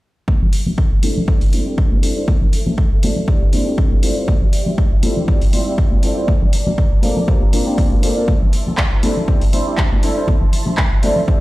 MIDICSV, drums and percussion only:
0, 0, Header, 1, 2, 480
1, 0, Start_track
1, 0, Tempo, 500000
1, 269, Time_signature, 4, 2, 24, 8
1, 10948, End_track
2, 0, Start_track
2, 0, Title_t, "Drums"
2, 266, Note_on_c, 9, 63, 88
2, 267, Note_on_c, 9, 36, 107
2, 271, Note_on_c, 9, 54, 55
2, 362, Note_off_c, 9, 63, 0
2, 363, Note_off_c, 9, 36, 0
2, 367, Note_off_c, 9, 54, 0
2, 405, Note_on_c, 9, 64, 101
2, 501, Note_off_c, 9, 64, 0
2, 506, Note_on_c, 9, 46, 104
2, 510, Note_on_c, 9, 54, 84
2, 602, Note_off_c, 9, 46, 0
2, 606, Note_off_c, 9, 54, 0
2, 636, Note_on_c, 9, 64, 90
2, 637, Note_on_c, 9, 63, 53
2, 641, Note_on_c, 9, 54, 35
2, 732, Note_off_c, 9, 64, 0
2, 733, Note_off_c, 9, 63, 0
2, 737, Note_off_c, 9, 54, 0
2, 747, Note_on_c, 9, 36, 106
2, 843, Note_off_c, 9, 36, 0
2, 878, Note_on_c, 9, 54, 37
2, 974, Note_off_c, 9, 54, 0
2, 987, Note_on_c, 9, 46, 100
2, 987, Note_on_c, 9, 54, 87
2, 990, Note_on_c, 9, 63, 83
2, 1083, Note_off_c, 9, 46, 0
2, 1083, Note_off_c, 9, 54, 0
2, 1086, Note_off_c, 9, 63, 0
2, 1120, Note_on_c, 9, 54, 34
2, 1127, Note_on_c, 9, 64, 91
2, 1216, Note_off_c, 9, 54, 0
2, 1223, Note_off_c, 9, 64, 0
2, 1227, Note_on_c, 9, 36, 116
2, 1323, Note_off_c, 9, 36, 0
2, 1356, Note_on_c, 9, 46, 58
2, 1452, Note_off_c, 9, 46, 0
2, 1467, Note_on_c, 9, 46, 102
2, 1471, Note_on_c, 9, 54, 89
2, 1475, Note_on_c, 9, 63, 65
2, 1563, Note_off_c, 9, 46, 0
2, 1567, Note_off_c, 9, 54, 0
2, 1571, Note_off_c, 9, 63, 0
2, 1602, Note_on_c, 9, 54, 39
2, 1698, Note_off_c, 9, 54, 0
2, 1707, Note_on_c, 9, 36, 108
2, 1803, Note_off_c, 9, 36, 0
2, 1842, Note_on_c, 9, 63, 86
2, 1938, Note_off_c, 9, 63, 0
2, 1947, Note_on_c, 9, 54, 87
2, 1949, Note_on_c, 9, 46, 102
2, 2043, Note_off_c, 9, 54, 0
2, 2045, Note_off_c, 9, 46, 0
2, 2186, Note_on_c, 9, 54, 46
2, 2187, Note_on_c, 9, 36, 111
2, 2189, Note_on_c, 9, 63, 88
2, 2282, Note_off_c, 9, 54, 0
2, 2283, Note_off_c, 9, 36, 0
2, 2285, Note_off_c, 9, 63, 0
2, 2318, Note_on_c, 9, 54, 37
2, 2318, Note_on_c, 9, 64, 95
2, 2414, Note_off_c, 9, 54, 0
2, 2414, Note_off_c, 9, 64, 0
2, 2428, Note_on_c, 9, 46, 107
2, 2436, Note_on_c, 9, 54, 84
2, 2524, Note_off_c, 9, 46, 0
2, 2532, Note_off_c, 9, 54, 0
2, 2557, Note_on_c, 9, 54, 33
2, 2557, Note_on_c, 9, 64, 93
2, 2560, Note_on_c, 9, 63, 54
2, 2653, Note_off_c, 9, 54, 0
2, 2653, Note_off_c, 9, 64, 0
2, 2656, Note_off_c, 9, 63, 0
2, 2667, Note_on_c, 9, 36, 106
2, 2763, Note_off_c, 9, 36, 0
2, 2801, Note_on_c, 9, 54, 34
2, 2897, Note_off_c, 9, 54, 0
2, 2908, Note_on_c, 9, 46, 101
2, 2911, Note_on_c, 9, 54, 94
2, 2919, Note_on_c, 9, 63, 97
2, 3004, Note_off_c, 9, 46, 0
2, 3007, Note_off_c, 9, 54, 0
2, 3015, Note_off_c, 9, 63, 0
2, 3030, Note_on_c, 9, 54, 42
2, 3037, Note_on_c, 9, 64, 81
2, 3126, Note_off_c, 9, 54, 0
2, 3133, Note_off_c, 9, 64, 0
2, 3147, Note_on_c, 9, 36, 115
2, 3243, Note_off_c, 9, 36, 0
2, 3280, Note_on_c, 9, 54, 38
2, 3376, Note_off_c, 9, 54, 0
2, 3387, Note_on_c, 9, 46, 100
2, 3395, Note_on_c, 9, 54, 88
2, 3399, Note_on_c, 9, 63, 64
2, 3483, Note_off_c, 9, 46, 0
2, 3491, Note_off_c, 9, 54, 0
2, 3495, Note_off_c, 9, 63, 0
2, 3524, Note_on_c, 9, 54, 36
2, 3620, Note_off_c, 9, 54, 0
2, 3628, Note_on_c, 9, 36, 113
2, 3724, Note_off_c, 9, 36, 0
2, 3756, Note_on_c, 9, 63, 94
2, 3852, Note_off_c, 9, 63, 0
2, 3867, Note_on_c, 9, 54, 79
2, 3868, Note_on_c, 9, 46, 108
2, 3963, Note_off_c, 9, 54, 0
2, 3964, Note_off_c, 9, 46, 0
2, 3998, Note_on_c, 9, 54, 38
2, 4094, Note_off_c, 9, 54, 0
2, 4106, Note_on_c, 9, 54, 50
2, 4108, Note_on_c, 9, 36, 120
2, 4108, Note_on_c, 9, 63, 100
2, 4202, Note_off_c, 9, 54, 0
2, 4204, Note_off_c, 9, 36, 0
2, 4204, Note_off_c, 9, 63, 0
2, 4237, Note_on_c, 9, 64, 88
2, 4333, Note_off_c, 9, 64, 0
2, 4348, Note_on_c, 9, 46, 109
2, 4349, Note_on_c, 9, 54, 80
2, 4444, Note_off_c, 9, 46, 0
2, 4445, Note_off_c, 9, 54, 0
2, 4472, Note_on_c, 9, 54, 37
2, 4475, Note_on_c, 9, 64, 83
2, 4481, Note_on_c, 9, 63, 58
2, 4568, Note_off_c, 9, 54, 0
2, 4571, Note_off_c, 9, 64, 0
2, 4577, Note_off_c, 9, 63, 0
2, 4589, Note_on_c, 9, 36, 108
2, 4685, Note_off_c, 9, 36, 0
2, 4722, Note_on_c, 9, 54, 32
2, 4818, Note_off_c, 9, 54, 0
2, 4827, Note_on_c, 9, 46, 104
2, 4828, Note_on_c, 9, 54, 86
2, 4829, Note_on_c, 9, 63, 90
2, 4923, Note_off_c, 9, 46, 0
2, 4924, Note_off_c, 9, 54, 0
2, 4925, Note_off_c, 9, 63, 0
2, 4957, Note_on_c, 9, 54, 38
2, 4961, Note_on_c, 9, 64, 78
2, 5053, Note_off_c, 9, 54, 0
2, 5057, Note_off_c, 9, 64, 0
2, 5069, Note_on_c, 9, 36, 120
2, 5077, Note_on_c, 9, 54, 45
2, 5165, Note_off_c, 9, 36, 0
2, 5173, Note_off_c, 9, 54, 0
2, 5198, Note_on_c, 9, 46, 62
2, 5294, Note_off_c, 9, 46, 0
2, 5309, Note_on_c, 9, 46, 102
2, 5309, Note_on_c, 9, 54, 96
2, 5313, Note_on_c, 9, 63, 70
2, 5405, Note_off_c, 9, 46, 0
2, 5405, Note_off_c, 9, 54, 0
2, 5409, Note_off_c, 9, 63, 0
2, 5440, Note_on_c, 9, 54, 36
2, 5536, Note_off_c, 9, 54, 0
2, 5549, Note_on_c, 9, 36, 112
2, 5645, Note_off_c, 9, 36, 0
2, 5679, Note_on_c, 9, 63, 84
2, 5775, Note_off_c, 9, 63, 0
2, 5788, Note_on_c, 9, 46, 102
2, 5789, Note_on_c, 9, 54, 86
2, 5884, Note_off_c, 9, 46, 0
2, 5885, Note_off_c, 9, 54, 0
2, 6029, Note_on_c, 9, 36, 116
2, 6031, Note_on_c, 9, 54, 48
2, 6031, Note_on_c, 9, 63, 97
2, 6125, Note_off_c, 9, 36, 0
2, 6127, Note_off_c, 9, 54, 0
2, 6127, Note_off_c, 9, 63, 0
2, 6161, Note_on_c, 9, 64, 91
2, 6163, Note_on_c, 9, 54, 35
2, 6257, Note_off_c, 9, 64, 0
2, 6259, Note_off_c, 9, 54, 0
2, 6268, Note_on_c, 9, 46, 107
2, 6278, Note_on_c, 9, 54, 88
2, 6364, Note_off_c, 9, 46, 0
2, 6374, Note_off_c, 9, 54, 0
2, 6399, Note_on_c, 9, 54, 37
2, 6399, Note_on_c, 9, 64, 89
2, 6401, Note_on_c, 9, 63, 63
2, 6495, Note_off_c, 9, 54, 0
2, 6495, Note_off_c, 9, 64, 0
2, 6497, Note_off_c, 9, 63, 0
2, 6509, Note_on_c, 9, 36, 110
2, 6605, Note_off_c, 9, 36, 0
2, 6637, Note_on_c, 9, 54, 34
2, 6733, Note_off_c, 9, 54, 0
2, 6744, Note_on_c, 9, 63, 97
2, 6748, Note_on_c, 9, 46, 103
2, 6751, Note_on_c, 9, 54, 87
2, 6840, Note_off_c, 9, 63, 0
2, 6844, Note_off_c, 9, 46, 0
2, 6847, Note_off_c, 9, 54, 0
2, 6880, Note_on_c, 9, 64, 80
2, 6885, Note_on_c, 9, 54, 33
2, 6976, Note_off_c, 9, 64, 0
2, 6981, Note_off_c, 9, 54, 0
2, 6989, Note_on_c, 9, 36, 122
2, 7085, Note_off_c, 9, 36, 0
2, 7127, Note_on_c, 9, 54, 31
2, 7223, Note_off_c, 9, 54, 0
2, 7229, Note_on_c, 9, 46, 111
2, 7231, Note_on_c, 9, 54, 80
2, 7234, Note_on_c, 9, 63, 70
2, 7325, Note_off_c, 9, 46, 0
2, 7327, Note_off_c, 9, 54, 0
2, 7330, Note_off_c, 9, 63, 0
2, 7363, Note_on_c, 9, 54, 35
2, 7459, Note_off_c, 9, 54, 0
2, 7468, Note_on_c, 9, 36, 108
2, 7469, Note_on_c, 9, 46, 60
2, 7564, Note_off_c, 9, 36, 0
2, 7565, Note_off_c, 9, 46, 0
2, 7596, Note_on_c, 9, 63, 90
2, 7692, Note_off_c, 9, 63, 0
2, 7709, Note_on_c, 9, 46, 110
2, 7713, Note_on_c, 9, 54, 75
2, 7805, Note_off_c, 9, 46, 0
2, 7809, Note_off_c, 9, 54, 0
2, 7845, Note_on_c, 9, 54, 33
2, 7941, Note_off_c, 9, 54, 0
2, 7947, Note_on_c, 9, 54, 47
2, 7948, Note_on_c, 9, 36, 111
2, 7956, Note_on_c, 9, 63, 78
2, 8043, Note_off_c, 9, 54, 0
2, 8044, Note_off_c, 9, 36, 0
2, 8052, Note_off_c, 9, 63, 0
2, 8081, Note_on_c, 9, 64, 82
2, 8177, Note_off_c, 9, 64, 0
2, 8188, Note_on_c, 9, 46, 99
2, 8193, Note_on_c, 9, 54, 77
2, 8284, Note_off_c, 9, 46, 0
2, 8289, Note_off_c, 9, 54, 0
2, 8320, Note_on_c, 9, 63, 57
2, 8328, Note_on_c, 9, 54, 36
2, 8330, Note_on_c, 9, 64, 77
2, 8416, Note_off_c, 9, 63, 0
2, 8424, Note_off_c, 9, 54, 0
2, 8424, Note_on_c, 9, 39, 105
2, 8426, Note_off_c, 9, 64, 0
2, 8428, Note_on_c, 9, 36, 101
2, 8520, Note_off_c, 9, 39, 0
2, 8524, Note_off_c, 9, 36, 0
2, 8558, Note_on_c, 9, 54, 35
2, 8654, Note_off_c, 9, 54, 0
2, 8662, Note_on_c, 9, 54, 82
2, 8669, Note_on_c, 9, 46, 98
2, 8671, Note_on_c, 9, 63, 86
2, 8758, Note_off_c, 9, 54, 0
2, 8765, Note_off_c, 9, 46, 0
2, 8767, Note_off_c, 9, 63, 0
2, 8800, Note_on_c, 9, 54, 41
2, 8805, Note_on_c, 9, 64, 75
2, 8896, Note_off_c, 9, 54, 0
2, 8901, Note_off_c, 9, 64, 0
2, 8906, Note_on_c, 9, 54, 49
2, 8908, Note_on_c, 9, 36, 116
2, 9002, Note_off_c, 9, 54, 0
2, 9004, Note_off_c, 9, 36, 0
2, 9038, Note_on_c, 9, 46, 62
2, 9134, Note_off_c, 9, 46, 0
2, 9146, Note_on_c, 9, 54, 85
2, 9149, Note_on_c, 9, 46, 102
2, 9155, Note_on_c, 9, 63, 66
2, 9242, Note_off_c, 9, 54, 0
2, 9245, Note_off_c, 9, 46, 0
2, 9251, Note_off_c, 9, 63, 0
2, 9288, Note_on_c, 9, 54, 37
2, 9384, Note_off_c, 9, 54, 0
2, 9384, Note_on_c, 9, 39, 112
2, 9388, Note_on_c, 9, 36, 109
2, 9480, Note_off_c, 9, 39, 0
2, 9484, Note_off_c, 9, 36, 0
2, 9526, Note_on_c, 9, 63, 81
2, 9622, Note_off_c, 9, 63, 0
2, 9624, Note_on_c, 9, 54, 89
2, 9628, Note_on_c, 9, 46, 102
2, 9720, Note_off_c, 9, 54, 0
2, 9724, Note_off_c, 9, 46, 0
2, 9762, Note_on_c, 9, 54, 38
2, 9858, Note_off_c, 9, 54, 0
2, 9864, Note_on_c, 9, 63, 85
2, 9867, Note_on_c, 9, 54, 51
2, 9868, Note_on_c, 9, 36, 106
2, 9960, Note_off_c, 9, 63, 0
2, 9963, Note_off_c, 9, 54, 0
2, 9964, Note_off_c, 9, 36, 0
2, 9993, Note_on_c, 9, 64, 89
2, 9995, Note_on_c, 9, 54, 33
2, 10089, Note_off_c, 9, 64, 0
2, 10091, Note_off_c, 9, 54, 0
2, 10105, Note_on_c, 9, 54, 92
2, 10108, Note_on_c, 9, 46, 94
2, 10201, Note_off_c, 9, 54, 0
2, 10204, Note_off_c, 9, 46, 0
2, 10231, Note_on_c, 9, 63, 54
2, 10235, Note_on_c, 9, 54, 37
2, 10239, Note_on_c, 9, 64, 76
2, 10327, Note_off_c, 9, 63, 0
2, 10331, Note_off_c, 9, 54, 0
2, 10335, Note_off_c, 9, 64, 0
2, 10342, Note_on_c, 9, 39, 108
2, 10348, Note_on_c, 9, 36, 107
2, 10438, Note_off_c, 9, 39, 0
2, 10444, Note_off_c, 9, 36, 0
2, 10481, Note_on_c, 9, 54, 34
2, 10577, Note_off_c, 9, 54, 0
2, 10588, Note_on_c, 9, 46, 95
2, 10596, Note_on_c, 9, 63, 79
2, 10597, Note_on_c, 9, 54, 99
2, 10684, Note_off_c, 9, 46, 0
2, 10692, Note_off_c, 9, 63, 0
2, 10693, Note_off_c, 9, 54, 0
2, 10715, Note_on_c, 9, 64, 72
2, 10721, Note_on_c, 9, 54, 39
2, 10811, Note_off_c, 9, 64, 0
2, 10817, Note_off_c, 9, 54, 0
2, 10828, Note_on_c, 9, 36, 116
2, 10924, Note_off_c, 9, 36, 0
2, 10948, End_track
0, 0, End_of_file